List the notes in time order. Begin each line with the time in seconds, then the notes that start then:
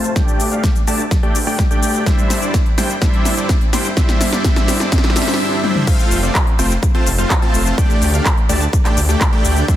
Already playing: F1 A3 C4 F4 C5 A5
0.04 closed hi-hat, shaker
0.16 A3 D4 G4 D5 G5, kick, snare, closed hi-hat, shaker
0.28 closed hi-hat, shaker
0.40 D2, open hi-hat, shaker
0.52 A3 D4 G4 D5 F5, closed hi-hat, shaker
0.64 kick, snare, closed hi-hat, shaker
0.75 closed hi-hat, shaker
0.87 D2 A3 D4 G4 D5 A5, open hi-hat, shaker
0.99 closed hi-hat, shaker
1.11 kick, snare, closed hi-hat, shaker
1.23 A3 D4 G4 D5 G5, closed hi-hat
1.35 D2, open hi-hat, shaker
1.47 A3 D4 G4 D5 G5, open hi-hat, shaker
1.59 kick, snare, shaker
1.71 A3 D4 G4 D5 G5, closed hi-hat, shaker
1.83 D2, open hi-hat, shaker
1.95 closed hi-hat, shaker
2.06 G3 D4 E4 C5 E5, kick, snare, closed hi-hat, shaker
2.18 closed hi-hat, shaker
2.30 C2, snare, open hi-hat, shaker
2.42 G3 D4 E4 C5 D5, closed hi-hat, shaker
2.54 kick, snare, closed hi-hat, shaker
2.66 closed hi-hat
2.78 C2 G3 D4 E4 C5 G5, snare, open hi-hat, shaker
2.90 closed hi-hat, shaker
3.02 G3 D4 E4 C5 E5, kick, snare, closed hi-hat, shaker
3.13 closed hi-hat
3.25 C2, snare, open hi-hat, shaker
3.37 G3 D4 E4 C5 D5, closed hi-hat, shaker
3.49 kick, snare, closed hi-hat, shaker
3.61 closed hi-hat
3.73 C2 G3 D4 E4 C5 G5, snare, open hi-hat, shaker
3.85 closed hi-hat, shaker
3.97 G3 D4 E4 C5 E5, kick, snare, closed hi-hat, shaker
4.09 snare, closed hi-hat, shaker
4.21 A1, snare, open hi-hat, shaker
4.33 G3 D4 E4 C5 D5, snare, shaker
4.44 G3 D4 E4, kick, snare, closed hi-hat, shaker
4.56 snare, closed hi-hat, shaker
4.68 A1, snare, open hi-hat, shaker
4.80 G3 D4 E4 C5 D5, snare, closed hi-hat, shaker
4.92 G3 D4 E4 C5 E5, kick, snare, closed hi-hat, shaker
4.98 snare
5.04 snare, closed hi-hat
5.10 snare
5.16 A1 G3 D4 E4 C5 E5, snare, open hi-hat, shaker
5.22 snare
5.28 snare, open hi-hat, shaker
5.34 snare
5.40 G3 D4 E4 C5 E5
5.63 G3 D4 E4 C5 E5, high tom
5.75 mid tom
5.87 A3 C4 F4 C5 F5, kick, closed hi-hat, crash, shaker
5.99 closed hi-hat, shaker
6.11 F1, open hi-hat, shaker
6.23 A3 C4 F4 C5 D5, closed hi-hat, shaker
6.35 kick, clap, closed hi-hat, shaker
6.47 closed hi-hat
6.59 F1 A3 C4 F4 C5 G5, open hi-hat, shaker
6.71 closed hi-hat, shaker
6.83 kick, closed hi-hat, shaker
6.95 A3 C4 F4 C5 A5, closed hi-hat
7.07 F1, open hi-hat, shaker
7.18 A3 C4 F4 C5 F5, closed hi-hat, shaker
7.30 kick, clap, closed hi-hat, shaker
7.42 A3 C4 F4 C5 A5, closed hi-hat
7.54 F1, open hi-hat, shaker
7.66 closed hi-hat, shaker
7.78 A3 D4 G4 D5 G5, kick, closed hi-hat, shaker
7.90 closed hi-hat, shaker
8.02 D2, open hi-hat, shaker
8.14 A3 D4 G4 D5 F5, closed hi-hat, shaker
8.26 kick, clap, closed hi-hat, shaker
8.37 closed hi-hat
8.49 D2 A3 D4 G4 D5 A5, open hi-hat, shaker
8.61 closed hi-hat, shaker
8.73 kick, closed hi-hat, shaker
8.85 A3 D4 G4 D5 G5, clap, closed hi-hat, shaker
8.97 D2, open hi-hat, shaker
9.09 A3 D4 G4 D5 G5, closed hi-hat, shaker
9.21 kick, clap, closed hi-hat, shaker
9.33 A3 D4 G4 D5 G5, closed hi-hat
9.45 D2, open hi-hat, shaker
9.56 closed hi-hat, shaker
9.68 G3 D4 E4 C5 E5, kick, closed hi-hat, shaker